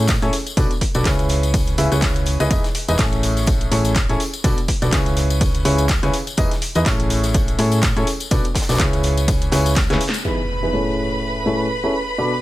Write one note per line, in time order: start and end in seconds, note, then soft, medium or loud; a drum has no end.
0.00 0.20 A2 medium
0.08 kick loud
0.08 snare loud
0.08 clap loud
0.08 closed hi-hat medium
0.08 tambourine medium
0.22 0.29 A2 loud
0.22 0.32 C#4 medium
0.22 0.32 E4 medium
0.22 0.32 G#4 medium
0.22 0.32 A4 medium
0.22 0.32 C#5 loud
0.22 closed hi-hat soft
0.22 tambourine soft
0.33 open hi-hat medium
0.33 tambourine medium
0.47 closed hi-hat soft
0.47 tambourine medium
0.57 0.67 B1 loud
0.57 0.70 B2 medium
0.57 0.70 D4 medium
0.57 0.70 F#4 medium
0.57 0.70 A4 medium
0.57 0.70 B4 medium
0.57 0.70 D5 medium
0.57 kick loud
0.57 closed hi-hat medium
0.57 tambourine medium
0.71 closed hi-hat soft
0.71 tambourine soft
0.81 kick medium
0.81 open hi-hat loud
0.81 tambourine medium
0.95 1.03 B1 loud
0.95 1.04 B2 medium
0.95 1.04 D4 medium
0.95 1.04 F#4 medium
0.95 1.04 A4 medium
0.95 1.04 B4 medium
0.95 1.04 D5 medium
0.95 closed hi-hat soft
0.95 tambourine medium
1.05 1.76 C#2 loud
1.05 1.76 C#3 medium
1.05 1.76 C#4 medium
1.05 1.76 E4 medium
1.05 1.76 G#4 medium
1.05 1.76 B4 medium
1.05 1.76 C#5 medium
1.05 kick loud
1.05 snare loud
1.05 clap loud
1.05 closed hi-hat medium
1.05 tambourine medium
1.19 closed hi-hat soft
1.19 tambourine soft
1.29 snare soft
1.29 open hi-hat medium
1.29 tambourine medium
1.43 closed hi-hat soft
1.43 tambourine medium
1.54 kick loud
1.54 closed hi-hat medium
1.54 tambourine medium
1.67 closed hi-hat soft
1.67 tambourine soft
1.78 1.89 C#2 medium
1.78 1.90 C#3 medium
1.78 1.90 C#4 medium
1.78 1.90 E4 medium
1.78 1.90 G#4 medium
1.78 1.90 B4 medium
1.78 1.90 E5 medium
1.78 open hi-hat loud
1.78 tambourine medium
1.92 2.37 C#2 medium
1.92 2.37 C#3 medium
1.92 2.37 C#4 medium
1.92 2.37 E4 medium
1.92 2.37 G#4 medium
1.92 2.37 B4 medium
1.92 2.37 C#5 medium
1.92 closed hi-hat soft
1.92 tambourine medium
2.01 kick loud
2.01 snare loud
2.01 clap loud
2.01 closed hi-hat medium
2.01 tambourine medium
2.16 closed hi-hat soft
2.16 tambourine soft
2.26 open hi-hat medium
2.26 tambourine medium
2.40 2.48 C#2 medium
2.40 2.49 C#4 medium
2.40 2.49 E4 medium
2.40 2.49 G#4 medium
2.40 2.49 B4 medium
2.40 2.49 D#5 medium
2.40 closed hi-hat soft
2.40 tambourine medium
2.51 2.61 E1 loud
2.51 2.63 E3 medium
2.51 2.63 D#4 medium
2.51 2.63 E4 medium
2.51 2.63 G#4 medium
2.51 2.63 B4 medium
2.51 2.63 D#5 medium
2.51 kick loud
2.51 closed hi-hat medium
2.51 tambourine medium
2.64 snare soft
2.64 closed hi-hat soft
2.64 tambourine soft
2.75 open hi-hat loud
2.75 tambourine medium
2.88 2.97 E1 medium
2.88 2.97 E3 medium
2.88 2.97 D#4 medium
2.88 2.97 E4 medium
2.88 2.97 G#4 medium
2.88 2.97 B4 medium
2.88 2.97 D#5 medium
2.88 closed hi-hat soft
2.88 tambourine medium
2.98 3.69 A1 loud
2.98 3.69 A2 medium
2.98 3.69 C#4 medium
2.98 3.69 E4 medium
2.98 3.69 G#4 medium
2.98 3.69 A4 medium
2.98 3.69 C#5 medium
2.98 kick loud
2.98 snare loud
2.98 clap loud
2.98 closed hi-hat medium
2.98 tambourine medium
3.12 closed hi-hat soft
3.12 tambourine soft
3.23 open hi-hat medium
3.23 tambourine medium
3.37 snare soft
3.37 closed hi-hat soft
3.37 tambourine medium
3.47 kick loud
3.47 closed hi-hat medium
3.47 tambourine medium
3.61 closed hi-hat soft
3.61 tambourine soft
3.72 4.07 A1 medium
3.72 3.90 A2 medium
3.72 3.90 C#4 medium
3.72 3.90 E4 medium
3.72 3.90 G#4 medium
3.72 3.90 A4 medium
3.72 3.90 C#5 loud
3.72 open hi-hat loud
3.72 tambourine medium
3.85 closed hi-hat soft
3.85 tambourine medium
3.95 kick loud
3.95 snare loud
3.95 clap loud
3.95 closed hi-hat medium
3.95 tambourine medium
4.09 4.17 A1 loud
4.09 4.19 C#4 medium
4.09 4.19 E4 medium
4.09 4.19 G#4 medium
4.09 4.19 A4 medium
4.09 4.19 C#5 loud
4.09 closed hi-hat soft
4.09 tambourine soft
4.20 open hi-hat medium
4.20 tambourine medium
4.33 closed hi-hat soft
4.33 tambourine medium
4.44 4.54 B1 loud
4.44 4.57 B2 medium
4.44 4.57 D4 medium
4.44 4.57 F#4 medium
4.44 4.57 A4 medium
4.44 4.57 B4 medium
4.44 4.57 D5 medium
4.44 kick loud
4.44 closed hi-hat medium
4.44 tambourine medium
4.57 closed hi-hat soft
4.57 tambourine soft
4.68 kick medium
4.68 open hi-hat loud
4.68 tambourine medium
4.82 4.90 B1 loud
4.82 4.91 B2 medium
4.82 4.91 D4 medium
4.82 4.91 F#4 medium
4.82 4.91 A4 medium
4.82 4.91 B4 medium
4.82 4.91 D5 medium
4.82 closed hi-hat soft
4.82 tambourine medium
4.92 5.63 C#2 loud
4.92 5.63 C#3 medium
4.92 5.63 C#4 medium
4.92 5.63 E4 medium
4.92 5.63 G#4 medium
4.92 5.63 B4 medium
4.92 5.63 C#5 medium
4.92 kick loud
4.92 snare loud
4.92 clap loud
4.92 closed hi-hat medium
4.92 tambourine medium
5.06 closed hi-hat soft
5.06 tambourine soft
5.16 snare soft
5.16 open hi-hat medium
5.16 tambourine medium
5.30 closed hi-hat soft
5.30 tambourine medium
5.41 kick loud
5.41 closed hi-hat medium
5.41 tambourine medium
5.54 closed hi-hat soft
5.54 tambourine soft
5.65 6.00 C#2 loud
5.65 5.84 C#3 medium
5.65 5.84 C#4 medium
5.65 5.84 E4 medium
5.65 5.84 G#4 medium
5.65 5.84 B4 medium
5.65 5.84 C#5 loud
5.65 open hi-hat loud
5.65 tambourine medium
5.78 closed hi-hat soft
5.78 tambourine medium
5.88 kick loud
5.88 snare loud
5.88 clap loud
5.88 closed hi-hat loud
5.88 tambourine loud
5.88 tambourine medium
6.03 6.11 C#2 loud
6.03 6.13 C#3 medium
6.03 6.13 C#4 medium
6.03 6.13 E4 medium
6.03 6.13 G#4 medium
6.03 6.13 B4 medium
6.03 6.13 C#5 loud
6.03 closed hi-hat soft
6.03 tambourine soft
6.14 open hi-hat medium
6.14 tambourine medium
6.27 closed hi-hat soft
6.27 tambourine medium
6.37 6.48 E1 loud
6.37 6.50 E3 medium
6.37 6.50 D#4 medium
6.37 6.50 E4 medium
6.37 6.50 G#4 medium
6.37 6.50 B4 medium
6.37 6.50 D#5 medium
6.37 kick loud
6.37 closed hi-hat loud
6.37 tambourine medium
6.51 snare soft
6.51 closed hi-hat soft
6.51 tambourine soft
6.62 open hi-hat loud
6.62 tambourine medium
6.75 6.84 E2 loud
6.75 6.85 E3 medium
6.75 6.85 D#4 medium
6.75 6.85 E4 medium
6.75 6.85 G#4 medium
6.75 6.85 B4 medium
6.75 6.85 D#5 medium
6.75 closed hi-hat soft
6.75 tambourine medium
6.86 7.57 A1 medium
6.86 7.56 A2 medium
6.86 7.56 C#4 medium
6.86 7.56 E4 medium
6.86 7.56 G#4 medium
6.86 7.56 A4 medium
6.86 7.56 C#5 medium
6.86 kick loud
6.86 snare loud
6.86 clap loud
6.86 closed hi-hat medium
6.86 tambourine medium
6.99 closed hi-hat soft
6.99 tambourine soft
7.10 open hi-hat medium
7.10 tambourine medium
7.23 snare soft
7.23 closed hi-hat soft
7.23 tambourine medium
7.34 kick loud
7.34 closed hi-hat loud
7.34 tambourine medium
7.48 closed hi-hat soft
7.48 tambourine soft
7.59 7.94 A2 medium
7.59 7.78 A2 medium
7.59 7.78 C#4 medium
7.59 7.78 E4 medium
7.59 7.78 G#4 medium
7.59 7.78 A4 medium
7.59 7.78 C#5 medium
7.59 open hi-hat loud
7.59 tambourine medium
7.72 closed hi-hat soft
7.72 tambourine medium
7.82 kick loud
7.82 snare loud
7.82 clap loud
7.82 closed hi-hat medium
7.82 tambourine medium
7.97 8.04 A2 loud
7.97 8.06 C#4 medium
7.97 8.06 E4 medium
7.97 8.06 G#4 medium
7.97 8.06 A4 medium
7.97 8.06 C#5 loud
7.97 closed hi-hat soft
7.97 tambourine soft
8.07 open hi-hat medium
8.07 tambourine medium
8.20 closed hi-hat soft
8.20 tambourine medium
8.31 8.41 B1 loud
8.31 8.44 B2 medium
8.31 8.44 D4 medium
8.31 8.44 F#4 medium
8.31 8.44 A4 medium
8.31 8.44 B4 medium
8.31 8.44 D5 medium
8.31 kick loud
8.31 closed hi-hat loud
8.31 tambourine medium
8.44 closed hi-hat soft
8.44 tambourine soft
8.55 kick medium
8.55 snare loud
8.55 open hi-hat loud
8.55 tambourine medium
8.62 snare medium
8.62 tambourine medium
8.69 8.78 B1 medium
8.69 8.78 B2 medium
8.69 8.78 D4 medium
8.69 8.78 F#4 medium
8.69 8.78 A4 medium
8.69 8.78 B4 medium
8.69 8.78 D5 medium
8.69 snare medium
8.69 closed hi-hat soft
8.69 tambourine medium
8.74 snare medium
8.74 tambourine medium
8.79 9.50 C#2 medium
8.79 9.50 C#3 medium
8.79 9.50 C#4 medium
8.79 9.50 E4 medium
8.79 9.50 G#4 medium
8.79 9.50 B4 medium
8.79 9.50 C#5 medium
8.79 kick loud
8.79 snare loud
8.79 clap loud
8.79 closed hi-hat loud
8.79 tambourine medium
8.93 closed hi-hat soft
8.93 tambourine soft
9.03 snare soft
9.03 open hi-hat medium
9.03 tambourine medium
9.17 closed hi-hat soft
9.17 tambourine medium
9.28 kick loud
9.28 closed hi-hat loud
9.28 tambourine medium
9.41 closed hi-hat soft
9.41 tambourine soft
9.52 9.87 C#2 medium
9.52 9.71 C#3 medium
9.52 9.71 C#4 medium
9.52 9.71 E4 medium
9.52 9.71 G#4 medium
9.52 9.71 B4 medium
9.52 9.71 C#5 loud
9.52 snare loud
9.52 open hi-hat loud
9.52 tambourine medium
9.66 closed hi-hat soft
9.66 tambourine medium
9.76 kick loud
9.76 snare loud
9.76 snare medium
9.76 clap loud
9.76 closed hi-hat loud
9.76 tambourine medium
9.90 9.98 C#2 medium
9.90 10.00 C#3 medium
9.90 10.00 C#4 medium
9.90 10.00 E4 medium
9.90 10.00 G#4 medium
9.90 10.00 B4 medium
9.90 10.00 C#5 loud
9.90 snare medium
9.90 closed hi-hat soft
9.90 tambourine soft
10.01 open hi-hat medium
10.01 tambourine medium
10.09 snare medium
10.14 closed hi-hat soft
10.14 tambourine medium
10.25 10.38 E3 medium
10.25 10.38 B3 medium
10.25 10.38 D#4 medium
10.25 10.38 E4 medium
10.25 10.38 G#4 medium
10.25 12.42 B4 medium
10.25 10.38 B4 medium
10.25 12.42 B5 medium
10.25 impact medium
10.63 10.72 E3 medium
10.63 10.72 B3 medium
10.63 10.72 D#4 medium
10.63 10.72 E4 medium
10.63 10.72 G#4 medium
10.63 10.72 B4 medium
10.73 11.43 A2 medium
10.73 11.43 C#4 medium
10.73 11.43 E4 medium
10.73 11.43 G#4 medium
10.73 11.43 A4 medium
10.73 11.43 C#5 medium
11.46 11.65 A2 medium
11.46 11.65 C#4 medium
11.46 11.65 E4 medium
11.46 11.65 G#4 medium
11.46 11.65 A4 medium
11.46 11.65 C#5 medium
11.84 11.93 C#4 medium
11.84 11.93 E4 medium
11.84 11.93 G#4 medium
11.84 11.93 A4 medium
11.84 11.93 C#5 medium
12.18 12.31 B2 medium
12.18 12.31 D4 medium
12.18 12.31 F#4 medium
12.18 12.31 A4 medium
12.18 12.31 B4 medium
12.18 12.31 D5 medium